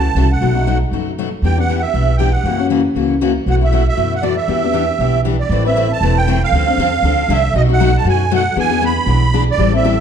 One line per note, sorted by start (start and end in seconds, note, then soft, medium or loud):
0.00 0.12 C#2 medium
0.00 0.32 A5 medium
0.15 0.37 C2 medium
0.15 0.26 C#3 medium
0.15 0.26 E3 medium
0.15 0.26 A3 medium
0.15 0.26 C#4 medium
0.15 0.26 F#4 medium
0.32 0.78 F#5 medium
0.41 0.82 B1 medium
0.41 0.55 B2 medium
0.41 0.55 F#3 medium
0.41 0.55 A3 medium
0.41 0.54 D#4 medium
0.41 0.54 F#4 medium
0.55 0.66 A3 soft
0.55 0.66 D#4 soft
0.55 0.66 F#4 soft
0.67 0.77 B2 medium
0.67 0.77 F#3 medium
0.67 0.77 A3 medium
0.67 0.77 D#4 medium
0.67 0.77 F#4 medium
0.91 1.32 F#1 medium
0.91 1.10 B2 soft
0.91 1.10 F#3 medium
0.91 1.11 A3 medium
0.91 1.11 D#4 medium
0.91 1.11 F#4 medium
1.18 1.28 B2 medium
1.18 1.28 F#3 medium
1.18 1.28 A3 medium
1.18 1.28 D#4 medium
1.18 1.28 F#4 medium
1.42 1.83 E2 medium
1.42 1.57 E3 medium
1.42 1.57 B3 soft
1.42 1.57 D4 medium
1.42 1.56 G4 medium
1.42 1.58 G5 medium
1.57 1.69 B3 soft
1.57 1.69 D4 soft
1.57 1.68 G4 soft
1.57 1.82 F#5 medium
1.69 1.79 E3 medium
1.69 1.79 B3 medium
1.69 1.79 D4 medium
1.69 1.79 G4 medium
1.81 2.16 E5 medium
1.94 2.35 B1 medium
1.94 2.12 E3 soft
1.94 2.12 B3 medium
1.94 2.12 D4 medium
1.94 2.12 G4 medium
2.17 2.29 E3 medium
2.17 2.29 B3 medium
2.17 2.30 D4 medium
2.17 2.30 G4 medium
2.17 2.33 G5 medium
2.31 2.67 F#5 medium
2.44 2.85 F#2 medium
2.44 2.58 C#3 medium
2.44 2.59 E3 medium
2.44 2.59 A#3 medium
2.44 2.58 C#4 medium
2.44 2.57 F#4 medium
2.58 2.69 A#3 soft
2.58 2.70 C#4 soft
2.58 2.70 F#4 medium
2.70 2.80 C#3 medium
2.70 2.80 E3 medium
2.70 2.80 A#3 medium
2.70 2.81 C#4 medium
2.70 2.80 F#4 medium
2.95 3.36 C#2 medium
2.95 3.14 C#3 medium
2.95 3.14 E3 medium
2.95 3.14 A#3 medium
2.95 3.14 C#4 medium
2.95 3.14 F#4 medium
3.21 3.31 C#3 medium
3.21 3.31 E3 medium
3.21 3.31 A#3 medium
3.21 3.31 C#4 medium
3.21 3.31 F#4 medium
3.46 3.87 B1 medium
3.46 3.60 B2 medium
3.46 3.61 E3 medium
3.46 3.61 A3 medium
3.46 3.61 E4 medium
3.46 3.60 F#4 medium
3.46 3.55 F#5 medium
3.61 3.72 A3 soft
3.61 3.72 E4 soft
3.61 3.72 F#4 medium
3.61 3.87 E5 medium
3.72 3.82 B2 medium
3.72 3.82 E3 medium
3.72 3.82 A3 medium
3.72 3.83 E4 medium
3.72 3.83 F#4 medium
3.88 4.14 E5 medium
3.97 4.38 F#2 medium
3.97 4.15 B2 medium
3.97 4.15 E3 medium
3.97 4.16 A3 medium
3.97 4.16 E4 medium
3.97 4.16 F#4 medium
4.15 4.24 F#5 medium
4.23 4.33 B2 medium
4.23 4.33 E3 medium
4.23 4.33 A3 medium
4.23 4.33 E4 medium
4.23 4.33 F#4 medium
4.23 4.36 D5 medium
4.37 5.21 E5 medium
4.48 4.89 E2 medium
4.48 4.62 E3 medium
4.48 4.62 B3 medium
4.48 4.62 D4 medium
4.48 4.62 G4 medium
4.63 4.73 B3 soft
4.63 4.73 D4 soft
4.63 4.73 G4 soft
4.73 4.84 E3 medium
4.73 4.84 B3 medium
4.73 4.84 D4 medium
4.73 4.84 G4 medium
4.99 5.40 B1 medium
4.99 5.18 E3 medium
4.99 5.18 B3 medium
4.99 5.18 D4 medium
4.99 5.18 G4 medium
5.25 5.35 E3 medium
5.25 5.35 B3 medium
5.25 5.35 D4 medium
5.25 5.36 G4 medium
5.40 5.63 D5 medium
5.49 5.91 A1 medium
5.49 5.65 E3 medium
5.49 5.65 A3 medium
5.49 5.65 C4 medium
5.49 5.65 E4 medium
5.49 5.64 B4 medium
5.65 5.76 C4 soft
5.65 5.76 E4 medium
5.65 5.76 B4 medium
5.65 5.92 E5 medium
5.76 5.86 E3 medium
5.76 5.86 A3 medium
5.76 5.86 C4 medium
5.76 5.86 E4 medium
5.76 5.87 B4 loud
5.93 6.18 A5 medium
6.01 6.42 E1 medium
6.01 6.20 E3 medium
6.01 6.20 A3 medium
6.01 6.20 C4 medium
6.01 6.20 E4 medium
6.01 6.20 B4 medium
6.17 6.43 G5 medium
6.28 6.37 E3 medium
6.28 6.37 A3 medium
6.28 6.38 C4 medium
6.28 6.38 E4 medium
6.28 6.38 B4 medium
6.43 7.33 F5 medium
6.52 6.72 D2 medium
6.52 6.67 D3 medium
6.52 6.67 F3 medium
6.52 6.67 C4 medium
6.52 6.67 D4 medium
6.52 6.66 A4 medium
6.67 6.79 C4 soft
6.67 6.78 D4 medium
6.67 6.78 A4 medium
6.77 6.99 E2 medium
6.77 6.88 D3 medium
6.77 6.89 F3 medium
6.77 6.89 C4 medium
6.77 6.89 D4 medium
6.77 6.89 A4 medium
7.03 7.25 D2 medium
7.03 7.21 D3 medium
7.03 7.22 F3 medium
7.03 7.22 C4 medium
7.03 7.22 D4 medium
7.03 7.22 A4 medium
7.28 7.50 C2 medium
7.28 7.39 D3 medium
7.28 7.39 F3 medium
7.28 7.39 C4 medium
7.28 7.40 D4 loud
7.28 7.40 A4 loud
7.28 7.54 E5 medium
7.54 7.95 B1 medium
7.54 7.68 B2 medium
7.54 7.68 F#3 medium
7.54 7.68 A3 medium
7.54 7.68 D#4 medium
7.54 7.68 F#4 medium
7.54 7.62 D#5 medium
7.69 7.79 A3 soft
7.69 7.80 D#4 medium
7.69 7.80 F#4 medium
7.69 7.97 F#5 medium
7.80 7.90 B2 medium
7.80 7.90 F#3 medium
7.80 7.90 A3 medium
7.80 7.90 D#4 medium
7.80 7.90 F#4 medium
7.97 8.07 A5 medium
8.05 8.46 F#2 medium
8.05 8.23 B2 medium
8.05 8.23 F#3 medium
8.05 8.23 A3 medium
8.05 8.24 D#4 medium
8.05 8.24 F#4 medium
8.09 8.33 G#5 medium
8.31 8.41 B2 medium
8.31 8.41 F#3 medium
8.31 8.41 A3 medium
8.31 8.41 D#4 loud
8.31 8.41 F#4 medium
8.31 8.57 F#5 medium
8.56 8.97 E2 medium
8.56 8.70 E3 medium
8.56 8.70 B3 medium
8.56 8.69 D4 medium
8.56 8.69 G#4 medium
8.56 8.84 G#5 loud
8.70 8.80 B3 soft
8.70 8.81 D4 medium
8.70 8.81 G#4 medium
8.81 8.91 E3 medium
8.81 8.92 B3 medium
8.81 8.92 D4 medium
8.81 8.92 G#4 medium
8.85 9.44 B5 loud
9.06 9.47 B1 medium
9.06 9.25 E3 medium
9.06 9.25 B3 medium
9.06 9.25 D4 medium
9.06 9.25 G#4 medium
9.33 9.43 E3 medium
9.33 9.43 B3 medium
9.33 9.43 D4 medium
9.33 9.43 G#4 medium
9.51 9.73 D5 medium
9.58 9.99 A1 medium
9.58 9.72 E3 medium
9.58 9.72 G3 medium
9.58 9.72 C4 medium
9.58 9.72 E4 medium
9.58 9.72 A4 medium
9.73 9.84 C4 soft
9.73 9.84 E4 medium
9.73 9.84 A4 medium
9.73 10.00 E5 medium
9.85 9.94 E3 medium
9.85 9.94 G3 medium
9.85 9.94 C4 medium
9.85 9.94 E4 medium
9.85 9.94 A4 medium